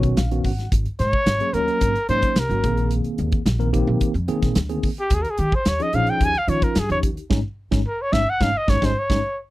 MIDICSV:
0, 0, Header, 1, 6, 480
1, 0, Start_track
1, 0, Tempo, 549451
1, 626, Time_signature, 4, 2, 24, 8
1, 8302, End_track
2, 0, Start_track
2, 0, Title_t, "Trumpet"
2, 0, Program_c, 0, 56
2, 871, Note_on_c, 0, 73, 102
2, 1343, Note_on_c, 0, 70, 89
2, 1356, Note_off_c, 0, 73, 0
2, 1825, Note_off_c, 0, 70, 0
2, 1829, Note_on_c, 0, 72, 100
2, 2090, Note_on_c, 0, 70, 83
2, 2104, Note_off_c, 0, 72, 0
2, 2558, Note_off_c, 0, 70, 0
2, 4366, Note_on_c, 0, 67, 84
2, 4494, Note_on_c, 0, 68, 80
2, 4507, Note_off_c, 0, 67, 0
2, 4564, Note_on_c, 0, 70, 82
2, 4577, Note_off_c, 0, 68, 0
2, 4634, Note_on_c, 0, 68, 68
2, 4647, Note_off_c, 0, 70, 0
2, 4711, Note_on_c, 0, 67, 86
2, 4724, Note_off_c, 0, 68, 0
2, 4849, Note_on_c, 0, 72, 80
2, 4862, Note_off_c, 0, 67, 0
2, 4966, Note_on_c, 0, 73, 94
2, 4980, Note_off_c, 0, 72, 0
2, 5089, Note_on_c, 0, 75, 86
2, 5102, Note_off_c, 0, 73, 0
2, 5199, Note_on_c, 0, 77, 96
2, 5212, Note_off_c, 0, 75, 0
2, 5328, Note_on_c, 0, 79, 95
2, 5342, Note_off_c, 0, 77, 0
2, 5457, Note_on_c, 0, 80, 112
2, 5470, Note_off_c, 0, 79, 0
2, 5575, Note_on_c, 0, 77, 94
2, 5588, Note_off_c, 0, 80, 0
2, 5673, Note_on_c, 0, 73, 94
2, 5686, Note_off_c, 0, 77, 0
2, 5796, Note_on_c, 0, 70, 82
2, 5809, Note_off_c, 0, 73, 0
2, 5934, Note_on_c, 0, 68, 78
2, 5947, Note_off_c, 0, 70, 0
2, 6035, Note_off_c, 0, 68, 0
2, 6041, Note_on_c, 0, 73, 90
2, 6107, Note_off_c, 0, 73, 0
2, 6878, Note_on_c, 0, 70, 79
2, 7006, Note_on_c, 0, 73, 87
2, 7019, Note_off_c, 0, 70, 0
2, 7099, Note_on_c, 0, 76, 97
2, 7112, Note_off_c, 0, 73, 0
2, 7251, Note_on_c, 0, 78, 92
2, 7264, Note_off_c, 0, 76, 0
2, 7362, Note_on_c, 0, 77, 96
2, 7375, Note_off_c, 0, 78, 0
2, 7490, Note_on_c, 0, 75, 86
2, 7503, Note_off_c, 0, 77, 0
2, 7599, Note_on_c, 0, 73, 93
2, 7612, Note_off_c, 0, 75, 0
2, 7734, Note_on_c, 0, 72, 82
2, 7747, Note_off_c, 0, 73, 0
2, 7855, Note_on_c, 0, 73, 90
2, 7868, Note_off_c, 0, 72, 0
2, 8201, Note_off_c, 0, 73, 0
2, 8302, End_track
3, 0, Start_track
3, 0, Title_t, "Tine electric piano"
3, 0, Program_c, 1, 4
3, 0, Note_on_c, 1, 51, 97
3, 0, Note_on_c, 1, 59, 87
3, 0, Note_on_c, 1, 61, 90
3, 0, Note_on_c, 1, 66, 106
3, 0, Note_on_c, 1, 73, 58
3, 136, Note_off_c, 1, 73, 0
3, 152, Note_on_c, 1, 77, 65
3, 165, Note_off_c, 1, 51, 0
3, 167, Note_off_c, 1, 59, 0
3, 167, Note_off_c, 1, 61, 0
3, 168, Note_off_c, 1, 66, 0
3, 274, Note_on_c, 1, 51, 80
3, 276, Note_on_c, 1, 61, 71
3, 276, Note_on_c, 1, 66, 77
3, 277, Note_on_c, 1, 59, 75
3, 372, Note_off_c, 1, 77, 0
3, 396, Note_on_c, 1, 78, 64
3, 440, Note_off_c, 1, 51, 0
3, 441, Note_off_c, 1, 61, 0
3, 441, Note_off_c, 1, 66, 0
3, 442, Note_off_c, 1, 59, 0
3, 505, Note_on_c, 1, 61, 28
3, 510, Note_on_c, 1, 66, 29
3, 563, Note_off_c, 1, 61, 0
3, 566, Note_off_c, 1, 66, 0
3, 615, Note_off_c, 1, 78, 0
3, 1228, Note_on_c, 1, 54, 69
3, 1229, Note_on_c, 1, 58, 66
3, 1232, Note_on_c, 1, 61, 65
3, 1232, Note_on_c, 1, 68, 79
3, 1312, Note_off_c, 1, 54, 0
3, 1312, Note_off_c, 1, 58, 0
3, 1314, Note_off_c, 1, 61, 0
3, 1314, Note_off_c, 1, 68, 0
3, 1352, Note_on_c, 1, 58, 82
3, 1353, Note_on_c, 1, 54, 87
3, 1355, Note_on_c, 1, 70, 103
3, 1356, Note_on_c, 1, 61, 78
3, 1691, Note_off_c, 1, 58, 0
3, 1692, Note_off_c, 1, 54, 0
3, 1692, Note_off_c, 1, 70, 0
3, 1693, Note_off_c, 1, 61, 0
3, 1827, Note_on_c, 1, 54, 88
3, 1832, Note_on_c, 1, 58, 81
3, 1833, Note_on_c, 1, 61, 78
3, 1833, Note_on_c, 1, 63, 88
3, 2082, Note_off_c, 1, 54, 0
3, 2085, Note_off_c, 1, 58, 0
3, 2085, Note_off_c, 1, 61, 0
3, 2085, Note_off_c, 1, 63, 0
3, 2190, Note_on_c, 1, 58, 62
3, 2193, Note_on_c, 1, 54, 69
3, 2193, Note_on_c, 1, 61, 59
3, 2194, Note_on_c, 1, 66, 75
3, 2298, Note_off_c, 1, 58, 0
3, 2304, Note_on_c, 1, 60, 67
3, 2306, Note_on_c, 1, 51, 74
3, 2308, Note_off_c, 1, 61, 0
3, 2308, Note_on_c, 1, 58, 75
3, 2309, Note_off_c, 1, 54, 0
3, 2309, Note_off_c, 1, 66, 0
3, 2309, Note_on_c, 1, 68, 80
3, 2978, Note_off_c, 1, 60, 0
3, 2979, Note_off_c, 1, 51, 0
3, 2980, Note_off_c, 1, 58, 0
3, 2980, Note_off_c, 1, 68, 0
3, 3138, Note_on_c, 1, 58, 78
3, 3139, Note_on_c, 1, 51, 87
3, 3143, Note_on_c, 1, 70, 98
3, 3145, Note_on_c, 1, 60, 77
3, 3227, Note_off_c, 1, 51, 0
3, 3227, Note_off_c, 1, 58, 0
3, 3229, Note_off_c, 1, 70, 0
3, 3230, Note_off_c, 1, 60, 0
3, 3258, Note_on_c, 1, 58, 93
3, 3259, Note_on_c, 1, 51, 121
3, 3261, Note_on_c, 1, 60, 106
3, 3261, Note_on_c, 1, 67, 111
3, 3604, Note_off_c, 1, 51, 0
3, 3604, Note_off_c, 1, 58, 0
3, 3605, Note_off_c, 1, 60, 0
3, 3605, Note_off_c, 1, 67, 0
3, 3739, Note_on_c, 1, 51, 115
3, 3739, Note_on_c, 1, 58, 93
3, 3742, Note_on_c, 1, 60, 98
3, 3743, Note_on_c, 1, 68, 118
3, 3998, Note_off_c, 1, 51, 0
3, 3998, Note_off_c, 1, 58, 0
3, 3999, Note_off_c, 1, 60, 0
3, 4000, Note_off_c, 1, 68, 0
3, 4100, Note_on_c, 1, 51, 92
3, 4102, Note_on_c, 1, 60, 79
3, 4102, Note_on_c, 1, 68, 98
3, 4103, Note_on_c, 1, 58, 75
3, 4273, Note_off_c, 1, 51, 0
3, 4273, Note_off_c, 1, 68, 0
3, 4274, Note_off_c, 1, 58, 0
3, 4274, Note_off_c, 1, 60, 0
3, 4352, Note_on_c, 1, 60, 26
3, 4353, Note_on_c, 1, 68, 30
3, 4406, Note_off_c, 1, 60, 0
3, 4407, Note_off_c, 1, 68, 0
3, 5065, Note_on_c, 1, 61, 72
3, 5067, Note_on_c, 1, 53, 80
3, 5068, Note_on_c, 1, 68, 84
3, 5070, Note_on_c, 1, 63, 73
3, 5150, Note_off_c, 1, 61, 0
3, 5151, Note_off_c, 1, 53, 0
3, 5151, Note_off_c, 1, 68, 0
3, 5152, Note_off_c, 1, 63, 0
3, 5186, Note_on_c, 1, 53, 100
3, 5188, Note_on_c, 1, 61, 85
3, 5188, Note_on_c, 1, 63, 84
3, 5192, Note_on_c, 1, 68, 98
3, 5527, Note_off_c, 1, 53, 0
3, 5528, Note_off_c, 1, 61, 0
3, 5528, Note_off_c, 1, 63, 0
3, 5530, Note_off_c, 1, 68, 0
3, 5657, Note_on_c, 1, 53, 89
3, 5658, Note_on_c, 1, 63, 77
3, 5661, Note_on_c, 1, 61, 83
3, 5663, Note_on_c, 1, 65, 101
3, 5916, Note_off_c, 1, 53, 0
3, 5917, Note_off_c, 1, 63, 0
3, 5918, Note_off_c, 1, 61, 0
3, 5919, Note_off_c, 1, 65, 0
3, 6023, Note_on_c, 1, 53, 76
3, 6027, Note_on_c, 1, 61, 61
3, 6028, Note_on_c, 1, 67, 72
3, 6029, Note_on_c, 1, 63, 68
3, 6194, Note_off_c, 1, 53, 0
3, 6195, Note_off_c, 1, 61, 0
3, 6196, Note_off_c, 1, 67, 0
3, 6197, Note_off_c, 1, 63, 0
3, 6255, Note_on_c, 1, 63, 31
3, 6261, Note_on_c, 1, 67, 34
3, 6317, Note_off_c, 1, 63, 0
3, 6320, Note_off_c, 1, 67, 0
3, 6376, Note_on_c, 1, 56, 96
3, 6377, Note_on_c, 1, 61, 109
3, 6382, Note_on_c, 1, 63, 97
3, 6457, Note_off_c, 1, 56, 0
3, 6458, Note_off_c, 1, 61, 0
3, 6460, Note_off_c, 1, 63, 0
3, 6738, Note_on_c, 1, 61, 101
3, 6739, Note_on_c, 1, 56, 100
3, 6743, Note_on_c, 1, 63, 92
3, 6816, Note_off_c, 1, 61, 0
3, 6817, Note_off_c, 1, 56, 0
3, 6819, Note_off_c, 1, 63, 0
3, 7097, Note_on_c, 1, 56, 92
3, 7101, Note_on_c, 1, 61, 99
3, 7102, Note_on_c, 1, 63, 91
3, 7178, Note_off_c, 1, 56, 0
3, 7180, Note_off_c, 1, 61, 0
3, 7181, Note_off_c, 1, 63, 0
3, 7345, Note_on_c, 1, 63, 107
3, 7347, Note_on_c, 1, 56, 104
3, 7348, Note_on_c, 1, 61, 106
3, 7422, Note_off_c, 1, 63, 0
3, 7424, Note_off_c, 1, 56, 0
3, 7424, Note_off_c, 1, 61, 0
3, 7580, Note_on_c, 1, 63, 94
3, 7584, Note_on_c, 1, 56, 96
3, 7586, Note_on_c, 1, 61, 94
3, 7660, Note_off_c, 1, 63, 0
3, 7662, Note_off_c, 1, 56, 0
3, 7663, Note_off_c, 1, 61, 0
3, 7711, Note_on_c, 1, 61, 105
3, 7713, Note_on_c, 1, 63, 98
3, 7714, Note_on_c, 1, 56, 94
3, 7784, Note_off_c, 1, 61, 0
3, 7786, Note_off_c, 1, 56, 0
3, 7786, Note_off_c, 1, 63, 0
3, 7951, Note_on_c, 1, 61, 94
3, 7951, Note_on_c, 1, 63, 104
3, 7953, Note_on_c, 1, 56, 95
3, 8024, Note_off_c, 1, 63, 0
3, 8025, Note_off_c, 1, 61, 0
3, 8026, Note_off_c, 1, 56, 0
3, 8302, End_track
4, 0, Start_track
4, 0, Title_t, "Upright bass"
4, 0, Program_c, 2, 32
4, 0, Note_on_c, 2, 35, 84
4, 119, Note_off_c, 2, 35, 0
4, 145, Note_on_c, 2, 34, 81
4, 362, Note_off_c, 2, 34, 0
4, 388, Note_on_c, 2, 32, 74
4, 603, Note_off_c, 2, 32, 0
4, 630, Note_on_c, 2, 32, 84
4, 737, Note_off_c, 2, 32, 0
4, 870, Note_on_c, 2, 44, 92
4, 977, Note_off_c, 2, 44, 0
4, 1101, Note_on_c, 2, 32, 86
4, 1213, Note_off_c, 2, 32, 0
4, 1338, Note_on_c, 2, 39, 81
4, 1451, Note_off_c, 2, 39, 0
4, 1584, Note_on_c, 2, 32, 84
4, 1694, Note_off_c, 2, 32, 0
4, 1824, Note_on_c, 2, 44, 76
4, 1934, Note_off_c, 2, 44, 0
4, 2058, Note_on_c, 2, 36, 77
4, 2171, Note_off_c, 2, 36, 0
4, 2179, Note_on_c, 2, 32, 82
4, 2289, Note_off_c, 2, 32, 0
4, 2301, Note_on_c, 2, 34, 87
4, 2627, Note_off_c, 2, 34, 0
4, 2783, Note_on_c, 2, 39, 88
4, 2894, Note_off_c, 2, 39, 0
4, 3019, Note_on_c, 2, 34, 87
4, 3346, Note_off_c, 2, 34, 0
4, 3383, Note_on_c, 2, 34, 95
4, 3491, Note_off_c, 2, 34, 0
4, 3618, Note_on_c, 2, 41, 84
4, 3728, Note_off_c, 2, 41, 0
4, 3862, Note_on_c, 2, 46, 77
4, 3970, Note_off_c, 2, 46, 0
4, 3981, Note_on_c, 2, 38, 85
4, 4198, Note_off_c, 2, 38, 0
4, 4459, Note_on_c, 2, 39, 96
4, 4571, Note_off_c, 2, 39, 0
4, 4706, Note_on_c, 2, 51, 90
4, 4814, Note_off_c, 2, 51, 0
4, 4940, Note_on_c, 2, 39, 86
4, 5051, Note_off_c, 2, 39, 0
4, 5184, Note_on_c, 2, 34, 82
4, 5294, Note_off_c, 2, 34, 0
4, 5421, Note_on_c, 2, 39, 87
4, 5532, Note_off_c, 2, 39, 0
4, 5660, Note_on_c, 2, 51, 88
4, 5771, Note_off_c, 2, 51, 0
4, 5905, Note_on_c, 2, 43, 85
4, 6014, Note_off_c, 2, 43, 0
4, 6025, Note_on_c, 2, 39, 85
4, 6240, Note_off_c, 2, 39, 0
4, 6382, Note_on_c, 2, 32, 89
4, 6473, Note_off_c, 2, 32, 0
4, 6741, Note_on_c, 2, 32, 94
4, 6831, Note_off_c, 2, 32, 0
4, 7099, Note_on_c, 2, 32, 92
4, 7192, Note_off_c, 2, 32, 0
4, 7343, Note_on_c, 2, 32, 96
4, 7434, Note_off_c, 2, 32, 0
4, 7584, Note_on_c, 2, 32, 98
4, 7675, Note_off_c, 2, 32, 0
4, 7703, Note_on_c, 2, 32, 97
4, 7792, Note_off_c, 2, 32, 0
4, 7947, Note_on_c, 2, 32, 80
4, 8034, Note_off_c, 2, 32, 0
4, 8302, End_track
5, 0, Start_track
5, 0, Title_t, "Muted upright bass strokes"
5, 988, Note_on_c, 9, 29, 36
5, 1075, Note_off_c, 9, 29, 0
5, 2664, Note_on_c, 9, 29, 33
5, 2751, Note_off_c, 9, 29, 0
5, 3740, Note_on_c, 9, 29, 40
5, 3828, Note_off_c, 9, 29, 0
5, 4824, Note_on_c, 9, 29, 41
5, 4911, Note_off_c, 9, 29, 0
5, 8302, End_track
6, 0, Start_track
6, 0, Title_t, "Drums"
6, 26, Note_on_c, 9, 42, 39
6, 29, Note_on_c, 9, 36, 77
6, 113, Note_off_c, 9, 42, 0
6, 117, Note_off_c, 9, 36, 0
6, 148, Note_on_c, 9, 42, 80
6, 151, Note_on_c, 9, 38, 112
6, 235, Note_off_c, 9, 42, 0
6, 239, Note_off_c, 9, 38, 0
6, 274, Note_on_c, 9, 42, 44
6, 361, Note_off_c, 9, 42, 0
6, 389, Note_on_c, 9, 36, 78
6, 389, Note_on_c, 9, 46, 72
6, 476, Note_off_c, 9, 36, 0
6, 476, Note_off_c, 9, 46, 0
6, 509, Note_on_c, 9, 42, 33
6, 513, Note_on_c, 9, 38, 31
6, 596, Note_off_c, 9, 42, 0
6, 600, Note_off_c, 9, 38, 0
6, 628, Note_on_c, 9, 36, 97
6, 630, Note_on_c, 9, 42, 90
6, 716, Note_off_c, 9, 36, 0
6, 717, Note_off_c, 9, 42, 0
6, 747, Note_on_c, 9, 42, 39
6, 834, Note_off_c, 9, 42, 0
6, 866, Note_on_c, 9, 42, 55
6, 869, Note_on_c, 9, 38, 33
6, 953, Note_off_c, 9, 42, 0
6, 957, Note_off_c, 9, 38, 0
6, 989, Note_on_c, 9, 36, 84
6, 1076, Note_off_c, 9, 36, 0
6, 1104, Note_on_c, 9, 42, 84
6, 1108, Note_on_c, 9, 38, 107
6, 1191, Note_off_c, 9, 42, 0
6, 1195, Note_off_c, 9, 38, 0
6, 1224, Note_on_c, 9, 42, 40
6, 1312, Note_off_c, 9, 42, 0
6, 1344, Note_on_c, 9, 42, 59
6, 1431, Note_off_c, 9, 42, 0
6, 1467, Note_on_c, 9, 42, 39
6, 1555, Note_off_c, 9, 42, 0
6, 1580, Note_on_c, 9, 42, 83
6, 1584, Note_on_c, 9, 36, 85
6, 1668, Note_off_c, 9, 42, 0
6, 1672, Note_off_c, 9, 36, 0
6, 1708, Note_on_c, 9, 42, 38
6, 1795, Note_off_c, 9, 42, 0
6, 1823, Note_on_c, 9, 42, 54
6, 1910, Note_off_c, 9, 42, 0
6, 1940, Note_on_c, 9, 42, 42
6, 1945, Note_on_c, 9, 36, 86
6, 2028, Note_off_c, 9, 42, 0
6, 2033, Note_off_c, 9, 36, 0
6, 2060, Note_on_c, 9, 42, 83
6, 2063, Note_on_c, 9, 38, 116
6, 2147, Note_off_c, 9, 42, 0
6, 2151, Note_off_c, 9, 38, 0
6, 2187, Note_on_c, 9, 42, 35
6, 2274, Note_off_c, 9, 42, 0
6, 2303, Note_on_c, 9, 42, 56
6, 2304, Note_on_c, 9, 36, 94
6, 2390, Note_off_c, 9, 42, 0
6, 2391, Note_off_c, 9, 36, 0
6, 2423, Note_on_c, 9, 42, 35
6, 2511, Note_off_c, 9, 42, 0
6, 2539, Note_on_c, 9, 42, 72
6, 2626, Note_off_c, 9, 42, 0
6, 2659, Note_on_c, 9, 42, 35
6, 2747, Note_off_c, 9, 42, 0
6, 2779, Note_on_c, 9, 42, 51
6, 2866, Note_off_c, 9, 42, 0
6, 2899, Note_on_c, 9, 42, 34
6, 2905, Note_on_c, 9, 36, 89
6, 2986, Note_off_c, 9, 42, 0
6, 2992, Note_off_c, 9, 36, 0
6, 3022, Note_on_c, 9, 42, 83
6, 3026, Note_on_c, 9, 38, 109
6, 3109, Note_off_c, 9, 42, 0
6, 3113, Note_off_c, 9, 38, 0
6, 3149, Note_on_c, 9, 42, 38
6, 3236, Note_off_c, 9, 42, 0
6, 3265, Note_on_c, 9, 36, 73
6, 3265, Note_on_c, 9, 42, 58
6, 3352, Note_off_c, 9, 36, 0
6, 3352, Note_off_c, 9, 42, 0
6, 3500, Note_on_c, 9, 42, 78
6, 3504, Note_on_c, 9, 36, 84
6, 3587, Note_off_c, 9, 42, 0
6, 3592, Note_off_c, 9, 36, 0
6, 3625, Note_on_c, 9, 42, 31
6, 3713, Note_off_c, 9, 42, 0
6, 3740, Note_on_c, 9, 42, 55
6, 3828, Note_off_c, 9, 42, 0
6, 3864, Note_on_c, 9, 42, 40
6, 3866, Note_on_c, 9, 36, 92
6, 3868, Note_on_c, 9, 38, 33
6, 3952, Note_off_c, 9, 42, 0
6, 3953, Note_off_c, 9, 36, 0
6, 3955, Note_off_c, 9, 38, 0
6, 3978, Note_on_c, 9, 42, 86
6, 3981, Note_on_c, 9, 38, 108
6, 4065, Note_off_c, 9, 42, 0
6, 4069, Note_off_c, 9, 38, 0
6, 4099, Note_on_c, 9, 42, 39
6, 4187, Note_off_c, 9, 42, 0
6, 4220, Note_on_c, 9, 46, 77
6, 4223, Note_on_c, 9, 36, 87
6, 4308, Note_off_c, 9, 46, 0
6, 4311, Note_off_c, 9, 36, 0
6, 4341, Note_on_c, 9, 42, 36
6, 4429, Note_off_c, 9, 42, 0
6, 4457, Note_on_c, 9, 42, 86
6, 4462, Note_on_c, 9, 36, 104
6, 4544, Note_off_c, 9, 42, 0
6, 4549, Note_off_c, 9, 36, 0
6, 4583, Note_on_c, 9, 42, 39
6, 4670, Note_off_c, 9, 42, 0
6, 4696, Note_on_c, 9, 42, 66
6, 4784, Note_off_c, 9, 42, 0
6, 4825, Note_on_c, 9, 36, 91
6, 4912, Note_off_c, 9, 36, 0
6, 4940, Note_on_c, 9, 42, 86
6, 4943, Note_on_c, 9, 38, 107
6, 5027, Note_off_c, 9, 42, 0
6, 5030, Note_off_c, 9, 38, 0
6, 5066, Note_on_c, 9, 42, 41
6, 5153, Note_off_c, 9, 42, 0
6, 5180, Note_on_c, 9, 42, 61
6, 5267, Note_off_c, 9, 42, 0
6, 5299, Note_on_c, 9, 42, 42
6, 5386, Note_off_c, 9, 42, 0
6, 5422, Note_on_c, 9, 36, 86
6, 5423, Note_on_c, 9, 42, 83
6, 5509, Note_off_c, 9, 36, 0
6, 5510, Note_off_c, 9, 42, 0
6, 5545, Note_on_c, 9, 42, 36
6, 5632, Note_off_c, 9, 42, 0
6, 5663, Note_on_c, 9, 42, 62
6, 5750, Note_off_c, 9, 42, 0
6, 5784, Note_on_c, 9, 36, 93
6, 5784, Note_on_c, 9, 42, 42
6, 5871, Note_off_c, 9, 36, 0
6, 5871, Note_off_c, 9, 42, 0
6, 5899, Note_on_c, 9, 42, 88
6, 5903, Note_on_c, 9, 38, 111
6, 5987, Note_off_c, 9, 42, 0
6, 5990, Note_off_c, 9, 38, 0
6, 6027, Note_on_c, 9, 42, 39
6, 6114, Note_off_c, 9, 42, 0
6, 6141, Note_on_c, 9, 42, 67
6, 6142, Note_on_c, 9, 36, 91
6, 6228, Note_off_c, 9, 42, 0
6, 6230, Note_off_c, 9, 36, 0
6, 6266, Note_on_c, 9, 42, 33
6, 6353, Note_off_c, 9, 42, 0
6, 6382, Note_on_c, 9, 36, 102
6, 6387, Note_on_c, 9, 38, 93
6, 6470, Note_off_c, 9, 36, 0
6, 6474, Note_off_c, 9, 38, 0
6, 6743, Note_on_c, 9, 36, 95
6, 6745, Note_on_c, 9, 38, 91
6, 6831, Note_off_c, 9, 36, 0
6, 6833, Note_off_c, 9, 38, 0
6, 7103, Note_on_c, 9, 36, 91
6, 7107, Note_on_c, 9, 38, 97
6, 7190, Note_off_c, 9, 36, 0
6, 7195, Note_off_c, 9, 38, 0
6, 7344, Note_on_c, 9, 36, 93
6, 7350, Note_on_c, 9, 38, 103
6, 7431, Note_off_c, 9, 36, 0
6, 7437, Note_off_c, 9, 38, 0
6, 7584, Note_on_c, 9, 36, 90
6, 7588, Note_on_c, 9, 38, 81
6, 7671, Note_off_c, 9, 36, 0
6, 7675, Note_off_c, 9, 38, 0
6, 7706, Note_on_c, 9, 36, 93
6, 7712, Note_on_c, 9, 38, 94
6, 7793, Note_off_c, 9, 36, 0
6, 7799, Note_off_c, 9, 38, 0
6, 7948, Note_on_c, 9, 36, 93
6, 7954, Note_on_c, 9, 38, 95
6, 8035, Note_off_c, 9, 36, 0
6, 8041, Note_off_c, 9, 38, 0
6, 8302, End_track
0, 0, End_of_file